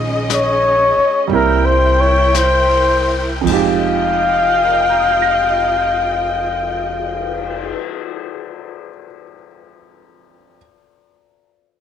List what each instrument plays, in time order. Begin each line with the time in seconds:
Already playing: upright bass A#1, grand piano D#3 G#3 C#4 F4 B4, string section C#4 G#4 D#5
0.30 snare, hi-hat pedal
0.34 flugelhorn C#5
0.97 muted upright bass stroke
1.28 upright bass C2, grand piano G3 A#3 C4, string section E4 A#4 G5, brush sweep
1.33 grand piano E4, flugelhorn A#4
1.65 flugelhorn C5
2.00 flugelhorn C#5
2.34 flugelhorn C5, snare, hi-hat pedal
3.41 grand piano F2 F3
3.46 upright bass F1, grand piano G#3 D#4, string section F4 D#5 G5, kick, crash
3.51 grand piano G4, flugelhorn F5
4.25 cymbal swell
4.64 grand piano A#4
4.72 grand piano D#5
4.81 grand piano G5
4.89 grand piano A#5
4.99 grand piano D#6
5.10 grand piano G6
5.22 grand piano A#6